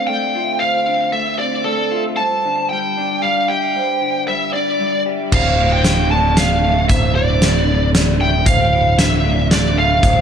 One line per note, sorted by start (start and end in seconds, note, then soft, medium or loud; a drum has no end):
0.00 0.35 D2 soft
0.00 0.61 D3 soft
0.00 1.14 C4 soft
0.07 1.12 A3 soft
0.07 0.35 D5 soft
0.07 0.62 G5 medium
0.35 1.66 F4 soft
0.35 0.61 E5 soft
0.60 1.93 D2 soft
0.60 1.14 C5 soft
0.60 1.12 F5 medium
0.87 2.18 D3 soft
1.12 1.65 A3 soft
1.12 1.38 E5 medium
1.39 2.19 C4 soft
1.39 1.64 D5 medium
1.39 1.66 D5 soft
1.64 2.21 A3 soft
1.64 2.02 A4 soft
1.64 1.93 D5 soft
1.91 2.18 F4 soft
1.91 2.19 E5 soft
2.17 3.50 G2 soft
2.17 2.71 C5 medium
2.17 2.69 A5 medium
2.45 3.76 D3 soft
2.69 3.22 G3 soft
2.69 3.24 G5 medium
2.97 4.28 D4 soft
2.97 3.22 D5 soft
3.22 4.27 G3 soft
3.22 3.49 D5 soft
3.22 3.50 F5 medium
3.48 4.80 G4 soft
3.48 3.76 E5 soft
3.48 4.24 G5 soft
3.75 5.06 G2 soft
3.75 4.28 C5 medium
4.01 5.32 D3 soft
4.28 4.79 G3 soft
4.28 4.53 E5 medium
4.53 5.33 D4 soft
4.53 5.02 D5 soft
4.53 4.79 D5 soft
4.80 5.33 G3 soft
4.80 5.07 D5 soft
5.06 5.32 G4 soft
5.06 5.33 E5 soft
5.32 6.86 D1 medium
5.32 6.90 D2 soft
5.32 5.85 C5 medium
5.32 5.70 F5 medium
5.32 kick medium
5.32 crash medium
5.59 6.36 A2 soft
5.72 6.11 G5 medium
5.84 7.42 D3 soft
5.84 snare medium
5.84 closed hi-hat soft
6.11 6.63 A3 soft
6.11 6.37 D5 medium
6.11 6.38 A5 medium
6.37 7.15 A2 soft
6.37 6.64 D5 medium
6.37 6.88 F5 medium
6.37 snare medium
6.37 closed hi-hat soft
6.64 7.68 A3 soft
6.64 6.90 E5 medium
6.89 8.43 D1 medium
6.89 8.46 D2 medium
6.89 7.42 C5 medium
6.89 7.15 E5 medium
6.89 kick medium
6.89 closed hi-hat soft
7.15 7.93 A2 soft
7.15 7.90 D5 medium
7.42 8.99 D3 soft
7.42 snare medium
7.42 closed hi-hat soft
7.68 8.20 A3 soft
7.68 7.94 D5 medium
7.94 8.71 A2 medium
7.94 8.21 D5 medium
7.94 snare medium
7.94 closed hi-hat soft
8.20 9.25 A3 soft
8.20 8.47 E5 medium
8.20 8.45 G5 medium
8.46 10.00 D1 medium
8.46 10.03 D2 medium
8.46 8.99 C5 medium
8.46 8.98 F5 medium
8.46 kick medium
8.46 closed hi-hat soft
8.72 9.50 A2 soft
8.98 10.21 D3 medium
8.98 9.47 E5 medium
8.98 snare medium
8.98 closed hi-hat soft
9.25 9.77 A3 medium
9.25 9.50 D5 medium
9.51 10.21 A2 medium
9.51 9.78 D5 medium
9.51 9.77 D5 medium
9.51 snare medium
9.51 closed hi-hat soft
9.77 10.21 A3 soft
9.77 10.03 E5 medium
9.77 10.21 F5 medium
10.03 10.21 D1 medium
10.03 10.21 D2 medium
10.03 10.21 C5 medium
10.03 kick medium
10.03 closed hi-hat soft